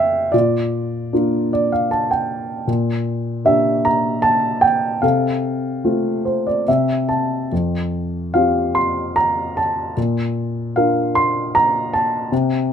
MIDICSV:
0, 0, Header, 1, 2, 480
1, 0, Start_track
1, 0, Tempo, 805369
1, 198, Time_signature, 3, 2, 24, 8
1, 674, Tempo, 780234
1, 3074, Tempo, 823045
1, 5954, Tempo, 781250
1, 7648, End_track
2, 0, Start_track
2, 0, Title_t, "Grand piano"
2, 0, Program_c, 0, 0
2, 0, Control_c, 0, 64, 127
2, 0, Note_on_c, 0, 41, 45
2, 0, Note_on_c, 0, 57, 38
2, 0, Note_on_c, 0, 65, 34
2, 0, Note_on_c, 0, 67, 41
2, 0, Note_on_c, 0, 72, 62
2, 0, Note_on_c, 0, 76, 73
2, 0, Note_on_c, 0, 77, 71
2, 0, Note_on_c, 0, 79, 68
2, 176, Note_off_c, 0, 41, 0
2, 178, Note_off_c, 0, 57, 0
2, 178, Note_off_c, 0, 65, 0
2, 180, Note_off_c, 0, 67, 0
2, 189, Note_on_c, 0, 74, 57
2, 201, Note_on_c, 0, 46, 48
2, 201, Note_on_c, 0, 65, 41
2, 204, Note_off_c, 0, 76, 0
2, 207, Control_c, 0, 64, 0
2, 208, Note_off_c, 0, 77, 0
2, 210, Note_off_c, 0, 79, 0
2, 212, Note_off_c, 0, 72, 0
2, 325, Control_c, 0, 64, 127
2, 671, Note_off_c, 0, 65, 0
2, 673, Note_on_c, 0, 62, 35
2, 675, Note_on_c, 0, 58, 39
2, 680, Note_on_c, 0, 65, 42
2, 911, Note_off_c, 0, 74, 0
2, 920, Note_on_c, 0, 74, 56
2, 1028, Note_off_c, 0, 74, 0
2, 1039, Note_on_c, 0, 77, 54
2, 1147, Note_off_c, 0, 77, 0
2, 1154, Note_on_c, 0, 81, 57
2, 1264, Note_off_c, 0, 81, 0
2, 1276, Note_on_c, 0, 79, 52
2, 1601, Note_off_c, 0, 62, 0
2, 1602, Note_off_c, 0, 58, 0
2, 1603, Note_off_c, 0, 46, 0
2, 1604, Note_off_c, 0, 79, 0
2, 1605, Note_off_c, 0, 65, 0
2, 1623, Note_on_c, 0, 46, 52
2, 1633, Control_c, 0, 64, 0
2, 1751, Control_c, 0, 64, 127
2, 2099, Note_on_c, 0, 58, 42
2, 2104, Note_on_c, 0, 62, 38
2, 2105, Note_on_c, 0, 76, 66
2, 2109, Note_on_c, 0, 67, 42
2, 2346, Note_on_c, 0, 82, 70
2, 2353, Note_off_c, 0, 76, 0
2, 2576, Note_on_c, 0, 81, 74
2, 2592, Note_off_c, 0, 82, 0
2, 2816, Note_on_c, 0, 79, 69
2, 2829, Note_off_c, 0, 81, 0
2, 3048, Note_off_c, 0, 58, 0
2, 3049, Note_off_c, 0, 46, 0
2, 3050, Note_off_c, 0, 62, 0
2, 3053, Note_off_c, 0, 67, 0
2, 3065, Note_on_c, 0, 77, 57
2, 3069, Note_on_c, 0, 48, 49
2, 3076, Note_on_c, 0, 69, 43
2, 3077, Note_off_c, 0, 79, 0
2, 3082, Control_c, 0, 64, 0
2, 3203, Control_c, 0, 64, 127
2, 3547, Note_on_c, 0, 60, 36
2, 3548, Note_on_c, 0, 57, 36
2, 3550, Note_on_c, 0, 65, 43
2, 3786, Note_on_c, 0, 72, 45
2, 3901, Note_off_c, 0, 72, 0
2, 3911, Note_on_c, 0, 74, 48
2, 4007, Note_off_c, 0, 77, 0
2, 4009, Note_off_c, 0, 48, 0
2, 4012, Note_off_c, 0, 69, 0
2, 4019, Note_off_c, 0, 57, 0
2, 4019, Note_off_c, 0, 60, 0
2, 4021, Note_off_c, 0, 65, 0
2, 4026, Note_off_c, 0, 74, 0
2, 4037, Note_on_c, 0, 76, 53
2, 4039, Note_on_c, 0, 48, 48
2, 4042, Control_c, 0, 64, 0
2, 4143, Control_c, 0, 64, 127
2, 4266, Note_off_c, 0, 76, 0
2, 4272, Note_on_c, 0, 81, 51
2, 4502, Note_off_c, 0, 81, 0
2, 4512, Note_off_c, 0, 48, 0
2, 4525, Note_on_c, 0, 41, 43
2, 4532, Control_c, 0, 64, 0
2, 4649, Control_c, 0, 64, 127
2, 5001, Note_on_c, 0, 77, 61
2, 5007, Note_on_c, 0, 65, 35
2, 5008, Note_on_c, 0, 60, 37
2, 5013, Note_on_c, 0, 67, 40
2, 5241, Note_on_c, 0, 84, 70
2, 5248, Note_off_c, 0, 77, 0
2, 5481, Note_on_c, 0, 82, 70
2, 5487, Note_off_c, 0, 84, 0
2, 5720, Note_on_c, 0, 81, 61
2, 5726, Note_off_c, 0, 82, 0
2, 5930, Note_off_c, 0, 41, 0
2, 5932, Note_off_c, 0, 65, 0
2, 5933, Note_off_c, 0, 60, 0
2, 5935, Note_off_c, 0, 67, 0
2, 5938, Note_off_c, 0, 81, 0
2, 5955, Note_on_c, 0, 46, 51
2, 5962, Control_c, 0, 64, 0
2, 6066, Control_c, 0, 64, 127
2, 6439, Note_on_c, 0, 77, 61
2, 6444, Note_on_c, 0, 62, 38
2, 6446, Note_on_c, 0, 65, 36
2, 6447, Note_on_c, 0, 70, 43
2, 6681, Note_on_c, 0, 84, 72
2, 6689, Note_off_c, 0, 77, 0
2, 6924, Note_on_c, 0, 82, 79
2, 6926, Note_off_c, 0, 84, 0
2, 7161, Note_on_c, 0, 81, 62
2, 7165, Note_off_c, 0, 82, 0
2, 7370, Note_off_c, 0, 46, 0
2, 7370, Note_off_c, 0, 62, 0
2, 7371, Note_off_c, 0, 65, 0
2, 7372, Note_off_c, 0, 70, 0
2, 7380, Note_off_c, 0, 81, 0
2, 7398, Note_on_c, 0, 48, 53
2, 7403, Control_c, 0, 64, 0
2, 7495, Control_c, 0, 64, 127
2, 7648, Note_off_c, 0, 48, 0
2, 7648, End_track
0, 0, End_of_file